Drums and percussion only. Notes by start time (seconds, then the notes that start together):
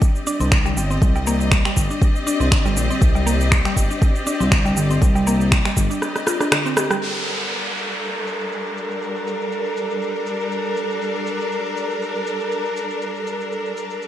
0.02 kick, shaker
0.16 shaker
0.27 shaker
0.41 shaker
0.52 finger snap, kick, shaker
0.66 shaker
0.77 shaker
0.91 shaker
1.02 kick, shaker
1.16 shaker
1.27 shaker
1.41 shaker
1.52 finger snap, kick, shaker
1.65 finger snap, shaker
1.77 kick, shaker
1.91 shaker
2.02 kick, shaker
2.16 shaker
2.27 shaker
2.41 shaker
2.52 finger snap, kick, shaker
2.66 shaker
2.77 shaker
2.91 shaker
3.02 kick, shaker
3.16 shaker
3.27 shaker
3.41 shaker
3.52 finger snap, kick, shaker
3.65 finger snap, shaker
3.77 kick, shaker
3.91 shaker
4.02 kick, shaker
4.16 shaker
4.27 shaker
4.41 shaker
4.52 finger snap, kick, shaker
4.66 shaker
4.77 shaker
4.91 shaker
5.02 kick, shaker
5.16 shaker
5.27 shaker
5.41 shaker
5.52 finger snap, kick, shaker
5.65 finger snap, shaker
5.77 kick, shaker
5.91 shaker
6.02 cross-stick, shaker
6.16 cross-stick, shaker
6.27 cross-stick, shaker
6.41 cross-stick, shaker
6.52 finger snap, cross-stick, shaker
6.66 shaker
6.77 cross-stick, shaker
6.91 cross-stick, shaker
7.02 crash, shaker
7.27 shaker
7.41 shaker
7.52 shaker
7.66 shaker
7.77 shaker
7.91 shaker
8.02 shaker
8.16 shaker
8.27 shaker
8.41 shaker
8.52 shaker
8.66 shaker
8.77 shaker
8.91 shaker
9.02 shaker
9.16 shaker
9.27 shaker
9.41 shaker
9.52 shaker
9.66 shaker
9.77 shaker
9.90 shaker
10.02 shaker
10.16 shaker
10.27 shaker
10.40 shaker
10.52 shaker
10.66 shaker
10.77 shaker
10.90 shaker
11.02 shaker
11.15 shaker
11.27 shaker
11.40 shaker
11.52 shaker
11.66 shaker
11.77 shaker
11.91 shaker
12.02 shaker
12.15 shaker
12.27 shaker
12.40 shaker
12.52 shaker
12.65 shaker
12.77 shaker
12.90 shaker
13.02 shaker
13.16 shaker
13.27 shaker
13.41 shaker
13.52 shaker
13.66 shaker
13.77 shaker
13.91 shaker
14.02 shaker